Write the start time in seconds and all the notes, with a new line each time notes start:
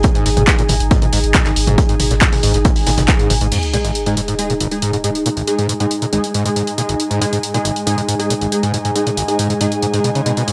Already playing: D#4 G#4 G#5
0.03 kick, closed hi-hat, mid tom
0.15 G#2, closed hi-hat
0.26 G#1 G#2, closed hi-hat, open hi-hat
0.37 G#1 G#2, closed hi-hat, mid tom
0.47 kick, snare, clap, closed hi-hat
0.59 A#2, closed hi-hat
0.68 G#1, closed hi-hat, mid tom, open hi-hat
0.80 G#1, closed hi-hat
0.91 G#2, kick, closed hi-hat
1.02 G#2, closed hi-hat, mid tom
1.12 G#1 G#2, closed hi-hat, open hi-hat
1.24 G#1, closed hi-hat
1.34 A#2, kick, snare, clap, closed hi-hat, mid tom
1.46 G#1, snare, clap, closed hi-hat
1.56 G#1, closed hi-hat, open hi-hat
1.67 G#1 G#2, closed hi-hat, mid tom
1.78 G#2, kick, closed hi-hat
1.89 G#2, closed hi-hat
2.00 G#1, closed hi-hat, mid tom, open hi-hat
2.11 G#1 A#2, snare, closed hi-hat
2.21 G#1, kick, snare, clap, closed hi-hat
2.33 snare, mid tom, open hi-hat
2.43 G#1 G#2, closed hi-hat, open hi-hat
2.54 G#1 G#2, snare, closed hi-hat
2.65 G#2, kick, closed hi-hat, mid tom
2.76 closed hi-hat, open hi-hat
2.86 G#1 A#2, snare, closed hi-hat, open hi-hat
2.97 G#1, snare, closed hi-hat, mid tom
3.08 kick, snare, clap, closed hi-hat
3.19 G#2, closed hi-hat
3.30 G#1 G#2, closed hi-hat, mid tom, open hi-hat
3.41 G#1 G#2, closed hi-hat
3.52 G#2 G#3 D#4, closed hi-hat, crash, sub drop
3.63 closed hi-hat
3.73 A#2 G#3 D#4 G#4, closed hi-hat
3.85 G#1, closed hi-hat
3.94 G#4, closed hi-hat
4.06 G#2 G#3 D#4 G#4, closed hi-hat
4.17 G#2, closed hi-hat
4.28 G#2, closed hi-hat
4.39 G#3 D#4 G#4, closed hi-hat
4.50 A#2, closed hi-hat
4.60 G#1, closed hi-hat
4.71 G#3 D#4 G#4, closed hi-hat
4.82 G#2, closed hi-hat
4.93 G#2, closed hi-hat
5.04 G#2 G#3 D#4 G#4, closed hi-hat
5.15 closed hi-hat
5.26 A#2 G#5, closed hi-hat
5.37 G#1, closed hi-hat
5.47 G#3 D#4 G#4, closed hi-hat
5.58 G#2, closed hi-hat
5.69 G#2, closed hi-hat
5.80 G#2 G#3 D#4 G#4, closed hi-hat
5.91 closed hi-hat
6.02 A#2, closed hi-hat
6.13 G#1 G#3 D#4 G#4, closed hi-hat
6.24 closed hi-hat
6.34 G#2, closed hi-hat
6.45 G#2 G#3 D#4 G#4, closed hi-hat
6.56 G#2, closed hi-hat
6.67 closed hi-hat
6.78 A#2 G#3 D#4 G#4, closed hi-hat
6.89 G#1, closed hi-hat
7.00 closed hi-hat
7.11 G#2, closed hi-hat
7.21 G#2 G#3 D#4 G#4, closed hi-hat
7.32 G#2, closed hi-hat
7.43 closed hi-hat
7.54 A#2 G#3 D#4 G#4, closed hi-hat
7.65 G#1, closed hi-hat
7.76 closed hi-hat
7.87 G#2 G#3 D#4 G#4, closed hi-hat
7.98 G#2, closed hi-hat
8.08 G#2, closed hi-hat
8.19 G#3 D#4 G#4, closed hi-hat
8.30 A#2, closed hi-hat
8.41 G#1, closed hi-hat
8.52 G#3 D#4 G#4, closed hi-hat
8.63 G#2, closed hi-hat
8.74 G#2, closed hi-hat
8.85 G#2, closed hi-hat
8.95 G#3 D#4 G#4, closed hi-hat
9.06 A#2, closed hi-hat
9.17 G#1, closed hi-hat
9.28 G#3 D#4 G#4, closed hi-hat
9.39 G#2, closed hi-hat
9.50 G#2, closed hi-hat
9.61 G#2 G#3 D#4 G#4, closed hi-hat
9.72 closed hi-hat
9.82 G#2, closed hi-hat
9.93 G#2 G#3 D#4 G#4, closed hi-hat
10.04 B2, closed hi-hat
10.15 C#3, closed hi-hat
10.26 B2 G#3 D#4 G#4, closed hi-hat
10.37 B2, closed hi-hat
10.48 G#2, closed hi-hat